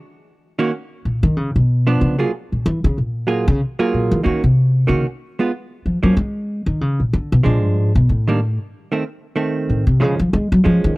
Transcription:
0.59 D#3 A#3 C#4 F#4
1.05 A#2
1.23 D#3
1.37 C#3
1.56 B2
1.87 F3 B3 D4
2.01 C#3
2.18 F#3 A#3 F4 G#4
2.52 A#2
2.66 E3
2.84 C#3
2.98 A#2
3.27 F#3 A#3 F4 G#4
3.48 C#3
3.79 F#3 A#3 F4 G#4
3.94 A#2
4.11 E3
4.23 D#3 A#3 C#4 F#4
4.44 C3
4.87 C#3 D#3 A#3 C#4 F#4
5.39 G#3 B3 F4
5.86 F3
6.03 F3 F#3 A#3 C#4
6.17 G#3
6.66 D#3
6.81 C#3
7.00 A#2
7.13 D3
7.32 B2
7.43 A#2 F3 G#3 D4
7.64 G2
7.78 G#2
7.95 B2
8.09 A2
8.28 D#3 G3 A#3 D4
8.92 D#3 A3 C4
9.36 D#3 A3 C4
9.69 A2
9.87 C3
10.00 C#3 F3 G#3 C#4
10.19 F3
10.33 G#3
10.52 F#3
10.64 F3 G#3 C#4
10.84 D#3

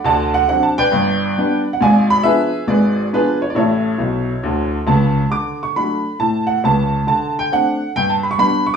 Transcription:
0.04 D2 D3 D5 F#5 A5
0.34 F#5
0.48 F#3 C4 D4 F#5
0.63 A5
0.78 B4 D5 G5
0.92 G1 G2
1.38 G3 B3 D4
1.73 F#5
1.81 G#1 G#2 D5 F5 G#5
2.10 B5
2.23 F3 B3 D4 G#4 B4 E5
2.67 G#1 G#2 G#4 B4 D5
3.13 F3 B3 D4 F4 G#4 B4
3.42 C#5
3.50 D5
3.55 A1 A2 E4 A4 C#5
3.98 B1 B2
4.43 D2 D3
4.87 C#2 C#3 A5
5.30 D3 D6
5.63 C#6
5.76 F#3 A3 D4 B5
6.19 A2 A5
6.47 F#5
6.64 C#2 C#3 A5
7.07 D3 A5
7.39 G5
7.52 A3 C4 D4 F#5
7.96 G2 G5
8.10 A5
8.23 B5
8.31 C#6
8.38 G3 B3 D4 B5
8.66 C#6

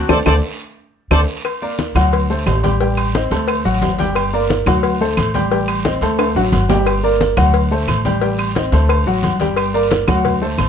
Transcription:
0.09 D2 A4 C5 D5, high bongo, high conga, high timbale, long guiro, claves
0.26 D2 A4 C5 D5, high bongo, high conga, high timbale, long guiro, claves
1.11 D2 A4 C5 D5, high bongo, high conga, high timbale, long guiro, claves
1.45 cowbell, high conga, low agogo, long guiro, claves
1.62 A#3 A#4 D5, high conga, low agogo
1.79 cowbell, high conga, short guiro
1.95 D2 F#3 F#4 F#5, cowbell, high conga, low conga, low agogo, short guiro, claves
2.13 cowbell, high conga, low agogo, long guiro
2.30 A3 A4 C5, high conga
2.46 A1, cowbell, high conga, low timbale, low agogo, short guiro, claves
2.63 G3 G4 G5, cowbell, high conga, low agogo, short guiro
2.81 G3 G4 G5, cowbell, high conga, long guiro
2.97 cowbell, high conga, low agogo, claves
3.15 C4 C5 D#5, cowbell, high conga, short guiro
3.31 D2 A3 A4 C5, cowbell, high conga, low agogo, short guiro
3.48 cowbell, high conga, low agogo, long guiro, claves
3.65 A1 F#3 F#4 F#5, high conga
3.82 G1, cowbell, high conga, low timbale, low agogo, short guiro
3.99 G3 G4 G5, cowbell, high conga, short guiro
4.15 cowbell, high conga, low agogo, long guiro, claves
4.33 A#3 A#4 D5, high conga, low agogo
4.50 cowbell, high conga, short guiro
4.66 D2 F#3 F#4 F#5, cowbell, high conga, low conga, low agogo, short guiro, claves
4.83 cowbell, high conga, low agogo, long guiro
5.00 A3 A4 C5, high conga
5.17 A1, cowbell, high conga, low agogo, short guiro, claves
5.34 G3 G4 G5, cowbell, high conga, low agogo, short guiro
5.51 G3 G4 G5, cowbell, high conga, long guiro
5.68 cowbell, high conga, low agogo, claves
5.85 C4 C5 D#5, cowbell, high conga, short guiro
6.01 D2 A3 A4 C5, cowbell, high conga, low agogo, short guiro
6.19 cowbell, high conga, high timbale, low agogo, long guiro, claves
6.35 A1 F#3 F#4 F#5, high conga, high timbale
6.52 G1, cowbell, high conga, low agogo, short guiro
6.69 G3 G4 G5, cowbell, high conga, low timbale, short guiro
6.86 cowbell, high conga, low agogo, long guiro, claves
7.03 A#3 A#4 D5, high conga, low agogo
7.20 cowbell, high conga, short guiro
7.37 D2 F#3 F#4 F#5, cowbell, high conga, low conga, low agogo, short guiro, claves
7.54 cowbell, low agogo, long guiro
7.71 A3 A4 C5, high conga
7.87 A1, cowbell, high conga, low agogo, short guiro, claves
8.05 G3 G4 G5, cowbell, high conga, low agogo, short guiro
8.21 G3 G4 G5, cowbell, high conga, long guiro
8.39 cowbell, high conga, low agogo, claves
8.55 C4 C5 D#5, cowbell, high conga, short guiro
8.72 D2 A3 A4 C5, cowbell, low agogo, short guiro
8.89 cowbell, high conga, low agogo, long guiro, claves
9.06 A1 F#3 F#4 F#5, high conga
9.23 G1, cowbell, high conga, low agogo, short guiro
9.40 G3 G4 G5, cowbell, high conga, short guiro
9.56 cowbell, high conga, low agogo, long guiro, claves
9.74 A#3 A#4 D5, high conga, low agogo
9.91 cowbell, high conga, short guiro
10.08 D2 F#3 F#4 F#5, cowbell, high conga, low conga, low agogo, short guiro, claves
10.25 cowbell, high conga, low conga, low agogo, long guiro
10.42 A3 A4 C5, high conga
10.58 A1, cowbell, high conga, low agogo, short guiro, claves

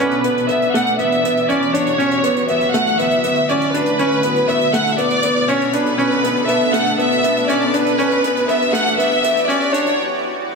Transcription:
Already playing: B3 B4
0.00 E3 C#4 F#4 G4 D5
0.11 closed hi-hat
0.24 B3, closed hi-hat
0.37 closed hi-hat
0.48 B3 E5, closed hi-hat
0.62 closed hi-hat
0.74 A3 F#5, closed hi-hat
0.86 closed hi-hat
0.99 B3 E5, closed hi-hat
1.12 closed hi-hat
1.23 B3, closed hi-hat
1.37 closed hi-hat
1.49 C#4 D5, closed hi-hat
1.62 closed hi-hat
1.73 D4 C#5, closed hi-hat
1.86 closed hi-hat
1.98 D3 A3 C#4 E4, closed hi-hat
2.11 closed hi-hat
2.23 B3, closed hi-hat
2.36 closed hi-hat
2.48 B3 E5, closed hi-hat
2.61 closed hi-hat
2.73 A3 F#5, closed hi-hat
2.86 closed hi-hat
2.99 B3 E5, closed hi-hat
3.11 closed hi-hat
3.23 B3, closed hi-hat
3.35 closed hi-hat
3.49 C#4 D5, closed hi-hat
3.61 closed hi-hat
3.73 D4 B4, closed hi-hat
3.86 closed hi-hat
3.99 B2 B3 C#4 D4 A4, closed hi-hat
4.12 closed hi-hat
4.23 B3, closed hi-hat
4.36 closed hi-hat
4.48 B3 E5, closed hi-hat
4.61 closed hi-hat
4.73 A3 F#5, closed hi-hat
4.87 closed hi-hat
4.91 E5
4.98 B3 D5, closed hi-hat
5.10 closed hi-hat
5.23 B3, closed hi-hat
5.36 closed hi-hat
5.48 C#4 C#5, closed hi-hat
5.61 closed hi-hat
5.73 D4 B4, closed hi-hat
5.86 closed hi-hat
5.98 C#4, closed hi-hat
6.12 closed hi-hat
6.24 B3, closed hi-hat
6.36 closed hi-hat
6.48 B3 E5, closed hi-hat
6.61 closed hi-hat
6.73 A3 F#5, closed hi-hat
6.86 closed hi-hat
6.98 B3 E5, closed hi-hat
7.12 closed hi-hat
7.23 B3, closed hi-hat
7.37 closed hi-hat
7.48 C#4 D5, closed hi-hat
7.61 closed hi-hat
7.73 D4 B4, closed hi-hat
7.86 closed hi-hat
7.97 E3 B3 C#4 F#4 G4 D5, closed hi-hat
8.11 closed hi-hat
8.24 B3, closed hi-hat
8.37 closed hi-hat
8.48 B3 E5, closed hi-hat
8.62 closed hi-hat
8.73 A3 F#5, closed hi-hat
8.87 closed hi-hat
8.98 B3 E5, closed hi-hat
9.11 closed hi-hat
9.23 B3, closed hi-hat
9.37 closed hi-hat
9.48 C#4 D5, closed hi-hat
9.61 closed hi-hat
9.72 D4 C#5, closed hi-hat
9.86 closed hi-hat
9.98 D3 A3 E4 C#5

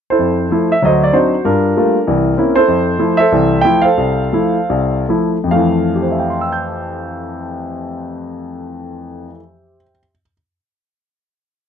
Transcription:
0.10 E4 A4 C5
0.19 F2
0.50 F3 A3 E4
0.72 E5
0.82 D2 F#3 F#4 D#5
0.86 C5
1.03 D5
1.13 F#3 C4 D4 D#4 F#4 C5
1.45 G2 D4 F4 A#4
1.77 G3 A3 A#3 F4
2.07 C2 E3
2.37 A#3 C4 C#4 E4
2.56 E4 A4 C5
2.68 F2
2.99 F3 A3 E4
3.17 A4 C5 E5
3.32 C2 E3
3.61 F3 A3 E4 G5
3.82 A4 C5 F5
3.97 C2
4.33 F3 A3 E4
4.69 C2
5.09 F3 A3 E4
5.44 F2 F3
5.51 A3 F5
5.56 E3
5.96 G4
6.02 C5
6.11 E5
6.19 G5
6.30 C6
6.41 E6
6.52 G6

